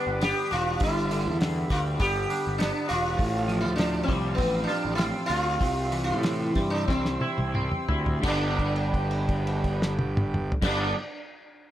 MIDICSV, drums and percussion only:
0, 0, Header, 1, 2, 480
1, 0, Start_track
1, 0, Tempo, 595829
1, 653, Time_signature, 4, 2, 24, 8
1, 3534, Tempo, 620476
1, 4974, Tempo, 657174
1, 5934, Tempo, 697674
1, 8787, End_track
2, 0, Start_track
2, 0, Title_t, "Drums"
2, 173, Note_on_c, 9, 46, 60
2, 182, Note_on_c, 9, 38, 102
2, 253, Note_off_c, 9, 46, 0
2, 263, Note_off_c, 9, 38, 0
2, 410, Note_on_c, 9, 46, 44
2, 490, Note_off_c, 9, 46, 0
2, 645, Note_on_c, 9, 46, 65
2, 652, Note_on_c, 9, 36, 115
2, 725, Note_off_c, 9, 46, 0
2, 732, Note_off_c, 9, 36, 0
2, 894, Note_on_c, 9, 46, 50
2, 975, Note_off_c, 9, 46, 0
2, 1133, Note_on_c, 9, 46, 73
2, 1143, Note_on_c, 9, 38, 108
2, 1213, Note_off_c, 9, 46, 0
2, 1223, Note_off_c, 9, 38, 0
2, 1372, Note_on_c, 9, 46, 51
2, 1373, Note_on_c, 9, 36, 78
2, 1381, Note_on_c, 9, 38, 31
2, 1452, Note_off_c, 9, 46, 0
2, 1453, Note_off_c, 9, 36, 0
2, 1462, Note_off_c, 9, 38, 0
2, 1608, Note_on_c, 9, 46, 70
2, 1612, Note_on_c, 9, 36, 103
2, 1689, Note_off_c, 9, 46, 0
2, 1692, Note_off_c, 9, 36, 0
2, 1854, Note_on_c, 9, 46, 54
2, 1935, Note_off_c, 9, 46, 0
2, 2096, Note_on_c, 9, 46, 65
2, 2105, Note_on_c, 9, 38, 98
2, 2176, Note_off_c, 9, 46, 0
2, 2186, Note_off_c, 9, 38, 0
2, 2333, Note_on_c, 9, 46, 51
2, 2414, Note_off_c, 9, 46, 0
2, 2571, Note_on_c, 9, 36, 107
2, 2573, Note_on_c, 9, 46, 72
2, 2651, Note_off_c, 9, 36, 0
2, 2654, Note_off_c, 9, 46, 0
2, 2813, Note_on_c, 9, 46, 45
2, 2894, Note_off_c, 9, 46, 0
2, 3047, Note_on_c, 9, 46, 74
2, 3056, Note_on_c, 9, 38, 106
2, 3127, Note_off_c, 9, 46, 0
2, 3137, Note_off_c, 9, 38, 0
2, 3291, Note_on_c, 9, 36, 89
2, 3293, Note_on_c, 9, 46, 46
2, 3372, Note_off_c, 9, 36, 0
2, 3373, Note_off_c, 9, 46, 0
2, 3531, Note_on_c, 9, 46, 62
2, 3533, Note_on_c, 9, 36, 107
2, 3608, Note_off_c, 9, 46, 0
2, 3610, Note_off_c, 9, 36, 0
2, 3767, Note_on_c, 9, 46, 48
2, 3844, Note_off_c, 9, 46, 0
2, 3994, Note_on_c, 9, 46, 59
2, 4003, Note_on_c, 9, 38, 102
2, 4071, Note_off_c, 9, 46, 0
2, 4081, Note_off_c, 9, 38, 0
2, 4237, Note_on_c, 9, 46, 47
2, 4314, Note_off_c, 9, 46, 0
2, 4479, Note_on_c, 9, 36, 107
2, 4482, Note_on_c, 9, 46, 65
2, 4556, Note_off_c, 9, 36, 0
2, 4559, Note_off_c, 9, 46, 0
2, 4720, Note_on_c, 9, 46, 52
2, 4797, Note_off_c, 9, 46, 0
2, 4962, Note_on_c, 9, 46, 65
2, 4971, Note_on_c, 9, 38, 118
2, 5036, Note_off_c, 9, 46, 0
2, 5044, Note_off_c, 9, 38, 0
2, 5197, Note_on_c, 9, 46, 49
2, 5200, Note_on_c, 9, 36, 77
2, 5206, Note_on_c, 9, 38, 30
2, 5270, Note_off_c, 9, 46, 0
2, 5273, Note_off_c, 9, 36, 0
2, 5279, Note_off_c, 9, 38, 0
2, 5437, Note_on_c, 9, 36, 102
2, 5445, Note_on_c, 9, 38, 57
2, 5510, Note_off_c, 9, 36, 0
2, 5518, Note_off_c, 9, 38, 0
2, 5563, Note_on_c, 9, 38, 55
2, 5636, Note_off_c, 9, 38, 0
2, 5676, Note_on_c, 9, 48, 64
2, 5749, Note_off_c, 9, 48, 0
2, 5800, Note_on_c, 9, 48, 58
2, 5873, Note_off_c, 9, 48, 0
2, 5924, Note_on_c, 9, 47, 73
2, 5993, Note_off_c, 9, 47, 0
2, 6040, Note_on_c, 9, 45, 71
2, 6108, Note_off_c, 9, 45, 0
2, 6156, Note_on_c, 9, 43, 89
2, 6225, Note_off_c, 9, 43, 0
2, 6278, Note_on_c, 9, 43, 77
2, 6347, Note_off_c, 9, 43, 0
2, 6395, Note_on_c, 9, 49, 93
2, 6398, Note_on_c, 9, 36, 97
2, 6464, Note_off_c, 9, 49, 0
2, 6467, Note_off_c, 9, 36, 0
2, 6640, Note_on_c, 9, 36, 57
2, 6643, Note_on_c, 9, 49, 44
2, 6709, Note_off_c, 9, 36, 0
2, 6711, Note_off_c, 9, 49, 0
2, 6756, Note_on_c, 9, 57, 43
2, 6825, Note_off_c, 9, 57, 0
2, 6881, Note_on_c, 9, 36, 68
2, 6881, Note_on_c, 9, 49, 44
2, 6949, Note_off_c, 9, 36, 0
2, 6950, Note_off_c, 9, 49, 0
2, 6997, Note_on_c, 9, 57, 45
2, 7065, Note_off_c, 9, 57, 0
2, 7119, Note_on_c, 9, 49, 46
2, 7122, Note_on_c, 9, 36, 63
2, 7188, Note_off_c, 9, 49, 0
2, 7191, Note_off_c, 9, 36, 0
2, 7245, Note_on_c, 9, 57, 51
2, 7314, Note_off_c, 9, 57, 0
2, 7363, Note_on_c, 9, 49, 49
2, 7365, Note_on_c, 9, 36, 59
2, 7432, Note_off_c, 9, 49, 0
2, 7434, Note_off_c, 9, 36, 0
2, 7489, Note_on_c, 9, 38, 95
2, 7557, Note_off_c, 9, 38, 0
2, 7602, Note_on_c, 9, 48, 91
2, 7671, Note_off_c, 9, 48, 0
2, 7729, Note_on_c, 9, 47, 97
2, 7798, Note_off_c, 9, 47, 0
2, 7846, Note_on_c, 9, 45, 84
2, 7915, Note_off_c, 9, 45, 0
2, 7968, Note_on_c, 9, 43, 93
2, 8037, Note_off_c, 9, 43, 0
2, 8038, Note_on_c, 9, 49, 100
2, 8040, Note_on_c, 9, 36, 104
2, 8047, Note_on_c, 9, 38, 94
2, 8107, Note_off_c, 9, 49, 0
2, 8108, Note_off_c, 9, 36, 0
2, 8115, Note_off_c, 9, 38, 0
2, 8787, End_track
0, 0, End_of_file